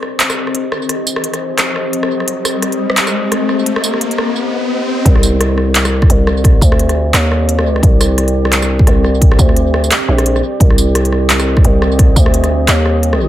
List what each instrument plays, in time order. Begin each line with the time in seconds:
Already playing: ambient pad C4 G4 D#5, riser
0.03 cross-stick
0.20 clap, closed hi-hat
0.30 cross-stick, tambourine
0.47 cross-stick
0.55 closed hi-hat
0.72 cross-stick
0.89 cross-stick, closed hi-hat
1.07 tambourine
1.16 cross-stick
1.24 closed hi-hat
1.34 cross-stick, closed hi-hat
1.58 cross-stick, clap, closed hi-hat
1.76 cross-stick
1.93 closed hi-hat
2.03 cross-stick
2.20 cross-stick
2.28 closed hi-hat
2.45 cross-stick, tambourine
2.62 cross-stick, closed hi-hat
2.72 closed hi-hat
2.90 cross-stick
2.97 clap, closed hi-hat
3.07 cross-stick, tambourine
3.32 cross-stick, closed hi-hat
3.49 cross-stick
3.66 closed hi-hat
3.76 cross-stick
3.84 tambourine
3.94 cross-stick
4.01 closed hi-hat
4.11 closed hi-hat
4.18 cross-stick
5.05 808-style bass C2, ambient pad C4 G4 D5, kick, closed hi-hat
5.16 cross-stick
5.23 tambourine
5.41 cross-stick, closed hi-hat
5.58 cross-stick
5.75 clap, closed hi-hat
5.85 cross-stick, tambourine
6.02 kick, cross-stick
6.10 808-style bass C2, closed hi-hat
6.27 cross-stick
6.44 kick, cross-stick, closed hi-hat
6.62 808-style bass D2, kick, tambourine
6.72 cross-stick
6.79 closed hi-hat
6.89 cross-stick, closed hi-hat
7.14 808-style bass D#2, cross-stick, clap, closed hi-hat
7.32 cross-stick
7.49 closed hi-hat
7.59 808-style bass D2, cross-stick
7.76 cross-stick
7.83 808-style bass C2, kick, closed hi-hat
8.01 cross-stick, tambourine
8.18 cross-stick, closed hi-hat
8.28 closed hi-hat
8.45 cross-stick
8.52 clap, closed hi-hat
8.62 cross-stick, tambourine
8.79 kick
8.87 808-style bass C2, cross-stick, closed hi-hat
9.04 cross-stick
9.21 kick, closed hi-hat
9.32 cross-stick
9.39 808-style bass D2, kick, tambourine
9.49 cross-stick
9.56 closed hi-hat
9.74 cross-stick
9.84 tambourine
9.91 cross-stick, clap, closed hi-hat
10.08 808-style bass A#1
10.18 cross-stick, closed hi-hat
10.26 closed hi-hat
10.36 cross-stick
10.60 808-style bass C2, ambient pad D#5, kick, closed hi-hat
10.70 cross-stick
10.78 tambourine
10.95 cross-stick, closed hi-hat
11.05 closed hi-hat
11.12 cross-stick
11.30 clap, closed hi-hat
11.40 cross-stick, tambourine
11.57 kick, cross-stick
11.64 808-style bass C2, closed hi-hat
11.82 cross-stick
11.99 kick, cross-stick, closed hi-hat
12.16 808-style bass D2, kick, tambourine
12.26 cross-stick
12.34 closed hi-hat
12.44 cross-stick, closed hi-hat
12.68 808-style bass D#2, cross-stick, clap, closed hi-hat
12.86 cross-stick
13.03 closed hi-hat
13.13 cross-stick